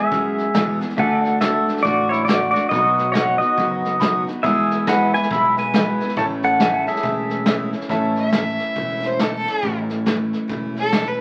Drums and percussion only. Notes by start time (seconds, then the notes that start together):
0.12 kick, snare
0.38 snare
0.55 kick, snare, hi-hat pedal
0.81 snare
0.90 snare
0.98 kick, snare
1.25 snare
1.41 kick, snare, hi-hat pedal
1.69 snare
1.77 snare
1.85 kick, snare
2.12 snare
2.28 kick, snare, hi-hat pedal
2.55 snare
2.71 kick, snare
2.98 snare
3.14 kick, snare, hi-hat pedal
3.41 snare
3.58 kick, snare
3.85 snare
4.01 kick, snare, hi-hat pedal
4.28 snare
4.44 kick, snare
4.71 snare
4.87 kick, snare, hi-hat pedal
5.14 snare
5.23 snare
5.31 kick, snare
5.57 snare
5.74 kick, snare, hi-hat pedal
6.00 snare
6.08 snare
6.17 kick, snare
6.42 snare
6.60 kick, snare, hi-hat pedal
6.87 snare
6.95 snare
7.03 kick, snare
7.30 snare
7.46 kick, snare, hi-hat pedal
7.73 snare
7.81 snare
7.89 kick, snare
8.16 snare
8.32 kick, snare, hi-hat pedal
8.59 snare
8.76 kick, snare
9.02 snare
9.19 kick, snare, hi-hat pedal
9.46 snare
9.63 kick, snare
9.89 snare
10.06 kick, snare, hi-hat pedal
10.33 snare
10.49 kick, snare
10.76 snare
10.93 kick, snare, hi-hat pedal